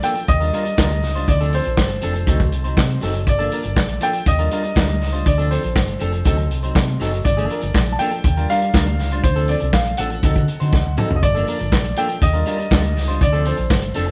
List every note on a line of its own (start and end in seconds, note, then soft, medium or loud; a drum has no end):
0.03 0.23 F3 medium
0.03 0.16 A#3 medium
0.03 0.15 D4 medium
0.03 0.14 A4 medium
0.03 0.29 G5 loud
0.03 closed hi-hat medium
0.15 muted clean electric guitar stroke medium
0.15 closed hi-hat soft
0.28 0.49 D#2 loud
0.28 1.31 D#5 loud
0.28 muted clean electric guitar stroke soft
0.28 kick loud
0.28 closed hi-hat medium
0.40 0.52 G3 medium
0.40 0.52 D4 medium
0.40 0.53 F4 medium
0.40 0.54 A#4 medium
0.40 closed hi-hat soft
0.53 0.73 G3 medium
0.53 0.65 D4 medium
0.53 0.65 F4 medium
0.53 0.64 A#4 loud
0.53 closed hi-hat medium
0.65 muted clean electric guitar stroke soft
0.65 closed hi-hat soft
0.78 1.04 D2 medium
0.78 0.98 G3 medium
0.78 0.91 D4 medium
0.78 0.91 F4 medium
0.78 0.90 A#4 loud
0.78 kick loud
0.78 snare loud
0.78 clap medium
0.91 muted clean electric guitar stroke soft
0.91 closed hi-hat soft
1.03 1.24 C#2 medium
1.03 muted clean electric guitar stroke soft
1.03 snare soft
1.03 open hi-hat medium
1.15 1.28 G3 medium
1.15 1.28 D4 medium
1.15 1.28 F4 medium
1.15 1.29 C5 medium
1.15 closed hi-hat medium
1.28 1.58 D2 loud
1.28 1.54 D5 loud
1.28 muted clean electric guitar stroke soft
1.28 kick loud
1.28 closed hi-hat medium
1.41 1.52 F3 medium
1.41 1.53 C4 medium
1.41 1.53 D4 medium
1.41 1.54 A4 medium
1.41 closed hi-hat soft
1.53 1.69 F3 medium
1.53 1.66 C4 medium
1.53 1.65 D4 medium
1.53 1.64 A4 medium
1.53 2.99 C5 loud
1.53 closed hi-hat medium
1.64 1.78 A#1 medium
1.64 muted clean electric guitar stroke soft
1.64 closed hi-hat medium
1.77 1.98 G1 medium
1.77 kick loud
1.77 snare loud
1.77 clap medium
1.89 muted clean electric guitar stroke medium
1.89 closed hi-hat medium
2.02 2.24 F1 loud
2.02 2.22 F3 medium
2.02 2.15 C4 medium
2.02 2.14 D4 medium
2.02 2.13 A4 medium
2.02 closed hi-hat medium
2.14 muted clean electric guitar stroke medium
2.14 closed hi-hat soft
2.27 2.54 D2 loud
2.27 2.47 F#3 loud
2.27 2.40 C4 medium
2.27 2.39 D#4 medium
2.27 2.39 A4 medium
2.27 kick loud
2.27 closed hi-hat medium
2.40 muted clean electric guitar stroke medium
2.40 kick loud
2.40 closed hi-hat soft
2.52 2.73 C2 loud
2.52 muted clean electric guitar stroke soft
2.52 closed hi-hat medium
2.64 2.81 F#3 medium
2.64 2.81 C4 medium
2.64 2.81 D#4 medium
2.64 2.80 C5 medium
2.64 closed hi-hat soft
2.77 2.97 C3 loud
2.77 kick loud
2.77 snare loud
2.77 clap medium
2.90 muted clean electric guitar stroke soft
2.90 closed hi-hat soft
3.01 3.27 F#1 loud
3.01 3.22 F#3 medium
3.01 3.15 C4 medium
3.01 3.15 D#4 medium
3.01 3.14 A4 medium
3.01 snare soft
3.01 open hi-hat medium
3.15 muted clean electric guitar stroke soft
3.15 closed hi-hat medium
3.27 3.47 G1 loud
3.27 4.05 D5 loud
3.27 muted clean electric guitar stroke soft
3.27 kick loud
3.27 closed hi-hat medium
3.39 3.50 F3 medium
3.39 3.51 A#3 medium
3.39 3.52 D4 medium
3.39 3.53 A4 medium
3.39 closed hi-hat soft
3.51 3.67 F3 medium
3.51 3.64 A#3 medium
3.51 3.64 D4 medium
3.51 3.64 A#4 medium
3.51 closed hi-hat medium
3.63 3.77 G1 medium
3.63 muted clean electric guitar stroke medium
3.63 closed hi-hat medium
3.76 3.97 A#1 medium
3.76 kick loud
3.76 snare medium
3.76 clap medium
3.89 muted clean electric guitar stroke medium
3.89 closed hi-hat medium
4.01 4.21 F3 medium
4.01 4.14 A#3 medium
4.01 4.13 D4 medium
4.01 4.12 A4 medium
4.01 4.28 G5 loud
4.01 closed hi-hat medium
4.13 muted clean electric guitar stroke medium
4.13 closed hi-hat soft
4.26 4.47 D#2 loud
4.26 5.30 D#5 loud
4.26 muted clean electric guitar stroke soft
4.26 kick loud
4.26 closed hi-hat medium
4.39 4.50 G3 medium
4.39 4.51 D4 medium
4.39 4.51 F4 medium
4.39 4.52 A#4 medium
4.39 closed hi-hat soft
4.51 4.71 G3 medium
4.51 4.64 D4 medium
4.51 4.64 F4 medium
4.51 4.63 A#4 medium
4.51 closed hi-hat medium
4.64 muted clean electric guitar stroke soft
4.64 closed hi-hat soft
4.76 5.02 D2 loud
4.76 4.96 G3 medium
4.76 4.89 D4 medium
4.76 4.89 F4 medium
4.76 4.88 A#4 medium
4.76 kick loud
4.76 snare loud
4.76 clap medium
4.89 muted clean electric guitar stroke medium
4.89 closed hi-hat soft
5.01 5.22 C#2 loud
5.01 muted clean electric guitar stroke soft
5.01 snare soft
5.01 open hi-hat medium
5.13 5.26 G3 medium
5.13 5.26 D4 medium
5.13 5.27 F4 medium
5.13 5.27 C5 medium
5.13 closed hi-hat medium
5.26 5.56 D2 loud
5.26 5.52 D5 medium
5.26 muted clean electric guitar stroke soft
5.26 kick loud
5.26 closed hi-hat medium
5.38 5.50 F3 medium
5.38 5.50 C4 medium
5.38 5.51 D4 medium
5.38 5.52 A4 medium
5.38 closed hi-hat soft
5.51 5.66 F3 medium
5.51 5.64 C4 medium
5.51 5.63 D4 medium
5.51 5.62 A4 medium
5.51 6.96 C5 medium
5.51 closed hi-hat medium
5.63 5.76 A#1 medium
5.63 muted clean electric guitar stroke soft
5.63 closed hi-hat medium
5.76 5.96 G1 medium
5.76 kick loud
5.76 snare medium
5.76 clap medium
5.88 muted clean electric guitar stroke medium
5.88 closed hi-hat medium
6.00 6.21 F1 loud
6.00 6.20 F3 medium
6.00 6.13 C4 medium
6.00 6.13 D4 medium
6.00 6.12 A4 loud
6.00 closed hi-hat medium
6.12 muted clean electric guitar stroke medium
6.12 closed hi-hat soft
6.25 6.51 D2 loud
6.25 6.45 F#3 medium
6.25 6.38 C4 loud
6.25 6.38 D#4 medium
6.25 6.37 A4 loud
6.25 kick loud
6.25 closed hi-hat medium
6.38 muted clean electric guitar stroke soft
6.38 closed hi-hat soft
6.51 6.71 C2 medium
6.51 muted clean electric guitar stroke soft
6.51 closed hi-hat medium
6.63 6.79 F#3 medium
6.63 6.79 C4 medium
6.63 6.79 D#4 medium
6.63 6.78 C5 medium
6.63 closed hi-hat soft
6.75 6.96 C3 medium
6.75 kick loud
6.75 snare loud
6.75 clap medium
6.88 muted clean electric guitar stroke soft
6.88 closed hi-hat medium
7.00 7.20 F#1 loud
7.00 7.20 F#3 loud
7.00 7.13 C4 loud
7.00 7.12 D#4 loud
7.00 7.12 A4 medium
7.00 snare soft
7.00 open hi-hat medium
7.13 muted clean electric guitar stroke medium
7.13 closed hi-hat medium
7.25 7.45 G1 loud
7.25 7.94 D5 loud
7.25 muted clean electric guitar stroke soft
7.25 kick loud
7.25 closed hi-hat medium
7.37 7.49 F3 medium
7.37 7.49 A#3 medium
7.37 7.50 D4 medium
7.37 7.51 A4 medium
7.37 closed hi-hat soft
7.50 7.65 F3 medium
7.50 7.63 A#3 medium
7.50 7.62 D4 medium
7.50 7.62 A#4 medium
7.50 closed hi-hat medium
7.62 7.73 G1 loud
7.62 muted clean electric guitar stroke soft
7.62 closed hi-hat medium
7.74 7.95 A#1 loud
7.74 kick loud
7.74 snare medium
7.74 clap medium
7.87 muted clean electric guitar stroke soft
7.87 closed hi-hat medium
7.92 7.99 A5 medium
7.99 8.19 F3 medium
7.99 8.12 A#3 medium
7.99 8.11 D4 loud
7.99 8.11 A4 loud
7.99 8.45 G5 loud
7.99 closed hi-hat medium
8.11 muted clean electric guitar stroke medium
8.11 closed hi-hat soft
8.24 8.44 D#2 medium
8.24 muted clean electric guitar stroke soft
8.24 kick loud
8.24 closed hi-hat medium
8.37 8.48 G3 medium
8.37 8.49 D4 medium
8.37 8.50 F4 medium
8.37 8.50 A#4 medium
8.37 closed hi-hat soft
8.50 8.69 G3 medium
8.50 8.63 D4 medium
8.50 8.62 F4 medium
8.50 8.61 A#4 medium
8.50 9.26 F5 loud
8.50 closed hi-hat medium
8.61 muted clean electric guitar stroke soft
8.61 closed hi-hat soft
8.74 9.00 D2 loud
8.74 8.94 G3 medium
8.74 8.87 D4 medium
8.74 8.87 F4 medium
8.74 8.86 A#4 medium
8.74 kick loud
8.74 snare loud
8.74 clap medium
8.86 muted clean electric guitar stroke soft
8.86 closed hi-hat soft
8.99 9.19 C#2 loud
8.99 muted clean electric guitar stroke soft
8.99 snare soft
8.99 open hi-hat medium
9.12 9.24 G3 medium
9.12 9.24 D4 medium
9.12 9.25 F4 medium
9.12 9.25 C5 medium
9.12 closed hi-hat medium
9.23 9.54 D2 loud
9.23 9.49 C5 loud
9.23 muted clean electric guitar stroke soft
9.23 kick loud
9.23 closed hi-hat medium
9.36 9.47 F3 medium
9.36 9.48 C4 medium
9.36 9.49 D4 medium
9.36 9.49 A4 medium
9.36 closed hi-hat soft
9.48 9.64 F3 medium
9.48 9.61 C4 medium
9.48 9.61 D4 medium
9.48 9.60 A4 medium
9.48 9.74 D5 medium
9.48 closed hi-hat medium
9.60 9.72 C2 medium
9.60 muted clean electric guitar stroke medium
9.60 closed hi-hat soft
9.73 9.93 A#1 loud
9.73 9.99 F5 medium
9.73 kick loud
9.73 snare loud
9.73 clap medium
9.85 muted clean electric guitar stroke soft
9.85 closed hi-hat medium
9.97 10.19 A1 medium
9.97 10.18 F3 medium
9.97 10.11 C4 medium
9.97 10.10 D4 medium
9.97 10.09 A4 medium
9.97 10.93 F#5 medium
9.97 closed hi-hat medium
10.10 muted clean electric guitar stroke medium
10.10 closed hi-hat soft
10.23 10.33 D2 medium
10.23 10.43 F#3 medium
10.23 10.36 C4 medium
10.23 10.35 D#4 medium
10.23 10.35 A4 medium
10.23 kick loud
10.23 closed hi-hat medium
10.36 10.46 D3 loud
10.36 muted clean electric guitar stroke medium
10.36 kick medium
10.36 closed hi-hat soft
10.48 muted clean electric guitar stroke soft
10.48 closed hi-hat medium
10.60 10.71 D3 loud
10.60 10.77 F#3 medium
10.60 10.77 C4 medium
10.60 10.76 D#4 medium
10.60 10.76 C5 medium
10.60 closed hi-hat soft
10.73 10.83 D2 medium
10.73 kick loud
10.73 snare medium
10.86 10.96 D2 medium
10.86 muted clean electric guitar stroke soft
10.97 11.17 F#3 medium
10.97 11.10 C4 loud
10.97 11.10 D#4 loud
10.97 11.09 A4 loud
10.97 mid tom loud
11.10 11.21 C2 loud
11.10 muted clean electric guitar stroke medium
11.10 floor tom loud
11.16 11.23 D#5 medium
11.23 11.43 G1 loud
11.23 11.99 D5 loud
11.23 muted clean electric guitar stroke soft
11.23 kick loud
11.23 closed hi-hat medium
11.35 11.46 F3 medium
11.35 11.46 A#3 medium
11.35 11.47 D4 loud
11.35 11.48 A4 medium
11.35 closed hi-hat soft
11.47 11.63 F3 medium
11.47 11.60 A#3 medium
11.47 11.59 D4 medium
11.47 11.59 A#4 medium
11.47 closed hi-hat medium
11.59 11.73 G1 loud
11.59 muted clean electric guitar stroke soft
11.59 closed hi-hat soft
11.72 11.92 A#1 medium
11.72 kick loud
11.72 snare loud
11.72 clap medium
11.84 muted clean electric guitar stroke medium
11.84 closed hi-hat soft
11.97 12.17 F3 medium
11.97 12.09 A#3 medium
11.97 12.09 D4 medium
11.97 12.08 A4 loud
11.97 12.23 G5 loud
11.97 closed hi-hat medium
12.09 muted clean electric guitar stroke medium
12.09 closed hi-hat soft
12.22 12.42 D#2 loud
12.22 13.24 D#5 loud
12.22 muted clean electric guitar stroke medium
12.22 kick loud
12.22 closed hi-hat medium
12.33 12.45 G3 soft
12.33 12.45 D4 medium
12.33 12.46 F4 medium
12.33 12.46 A#4 medium
12.33 closed hi-hat soft
12.46 12.66 G3 loud
12.46 12.59 D4 medium
12.46 12.58 F4 medium
12.46 12.57 A#4 medium
12.46 closed hi-hat medium
12.59 muted clean electric guitar stroke soft
12.59 closed hi-hat soft
12.71 12.97 D2 loud
12.71 12.91 G3 medium
12.71 12.84 D4 medium
12.71 12.83 F4 medium
12.71 12.82 A#4 medium
12.71 kick loud
12.71 snare loud
12.71 clap medium
12.84 muted clean electric guitar stroke medium
12.84 closed hi-hat medium
12.96 13.17 C#2 loud
12.96 muted clean electric guitar stroke soft
12.96 snare soft
12.96 open hi-hat medium
13.08 13.20 G3 medium
13.08 13.20 D4 medium
13.08 13.21 F4 medium
13.08 13.21 C5 medium
13.08 closed hi-hat medium
13.20 13.51 D2 loud
13.20 13.47 D5 loud
13.20 muted clean electric guitar stroke soft
13.20 kick loud
13.20 closed hi-hat medium
13.33 13.43 F3 medium
13.33 13.44 C4 medium
13.33 13.45 D4 medium
13.33 13.45 A4 loud
13.33 closed hi-hat soft
13.45 13.61 F3 medium
13.45 13.58 C4 medium
13.45 13.57 D4 medium
13.45 13.57 A4 medium
13.45 14.11 C5 medium
13.45 closed hi-hat medium
13.57 13.71 A#1 loud
13.57 muted clean electric guitar stroke soft
13.57 closed hi-hat medium
13.70 13.91 G1 medium
13.70 kick loud
13.70 snare loud
13.70 clap medium
13.82 muted clean electric guitar stroke soft
13.82 closed hi-hat medium
13.94 14.11 F1 medium
13.94 14.11 F3 medium
13.94 14.07 C4 medium
13.94 14.06 D4 loud
13.94 14.06 A4 loud
13.94 closed hi-hat medium
14.07 muted clean electric guitar stroke medium
14.07 closed hi-hat soft